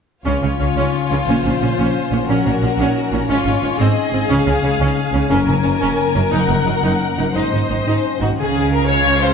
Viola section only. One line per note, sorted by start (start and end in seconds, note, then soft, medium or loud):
0.25 0.41 C#4 soft
0.43 0.49 C#4 soft
0.60 0.66 C#4 soft
0.77 0.92 C#4 soft
1.12 1.18 C#4 soft
1.28 1.43 C#4 soft
1.45 1.52 C#4 soft
1.62 1.68 C#4 soft
1.79 1.94 C#4 soft
2.11 2.18 C#4 soft
2.29 2.44 C#4 soft
2.46 2.53 C#4 soft
2.63 2.69 C#4 soft
2.80 2.95 C#4 soft
3.14 3.20 C#4 soft
3.29 3.45 C#4 medium
3.46 3.53 C#4 soft
3.63 3.70 C#4 soft
3.80 3.95 C4 medium
4.14 4.20 C4 soft
4.29 4.45 C#4 medium
4.46 4.53 C#4 soft
4.63 4.70 C#4 soft
4.80 4.96 C#4 medium
5.14 5.20 C#4 soft
5.30 5.46 C#4 medium
5.47 5.54 C#4 soft
5.63 5.70 C#4 soft
5.81 5.97 C#4 medium
6.15 6.22 C#4 soft
6.31 6.46 D#4 medium
6.47 6.54 D#4 soft
6.66 6.73 D#4 soft
6.83 6.99 D#4 soft
7.18 7.25 D#4 soft
7.36 7.51 D#4 soft
7.53 7.60 D#4 soft
7.70 7.77 D#4 soft
7.87 8.03 D#4 soft
8.21 8.28 D#4 soft
8.90 9.34 F4 soft